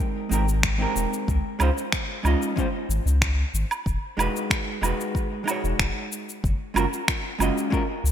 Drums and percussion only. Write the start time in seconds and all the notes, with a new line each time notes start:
0.32 shaker
0.49 shaker
0.63 finger snap, kick, shaker
0.96 shaker
1.14 shaker
1.28 kick, shaker
1.60 low woodblock, shaker
1.78 shaker
1.92 finger snap, kick, shaker
2.25 low woodblock, shaker
2.42 shaker
2.57 kick, shaker
2.91 shaker
3.07 shaker
3.22 finger snap, kick, shaker
3.55 shaker
3.71 low woodblock, shaker
3.86 kick, shaker
4.19 low woodblock, shaker
4.36 shaker
4.50 finger snap, kick, shaker
4.83 low woodblock, shaker
5.01 shaker
5.15 kick, shaker
5.48 low woodblock, shaker
5.65 shaker
5.79 finger snap, kick, shaker
6.12 shaker
6.29 shaker
6.44 kick, shaker
6.76 low woodblock, shaker
6.93 shaker
7.08 finger snap, kick, shaker
7.40 low woodblock, shaker
7.58 shaker
7.72 kick, shaker
8.06 shaker